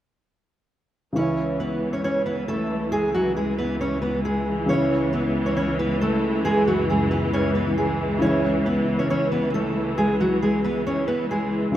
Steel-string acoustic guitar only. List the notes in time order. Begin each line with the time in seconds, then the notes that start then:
1.16 C#4 C#5
1.60 B3 B4
1.93 C#4 C#5
2.04 C#4 C#5
2.26 B3 B4
2.48 A3 A4
2.92 G#3 G#4
3.14 F#3 F#4
3.37 G#3 G#4
3.58 B3 B4
3.81 C#4 C#5
4.02 B3 B4
4.25 G#3 G#4
4.69 C#4 C#5
5.13 B3 B4
5.46 C#4 C#5
5.57 C#4 C#5
5.79 B3 B4
6.01 A3 A4
6.45 G#3 G#4
6.67 F#3 F#4
6.90 G#3 G#4
7.11 B3 B4
7.33 C#4 C#5
7.55 B3 B4
7.78 G#3 G#4
8.22 C#4 C#5
8.66 B3 B4
8.99 C#4 C#5
9.10 C#4 C#5
9.32 B3 B4
9.54 A3 A4
9.98 G#3 G#4
10.20 F#3 F#4
10.42 G#3 G#4
10.64 B3 B4
10.87 C#4 C#5
11.08 B3 B4
11.31 G#3 G#4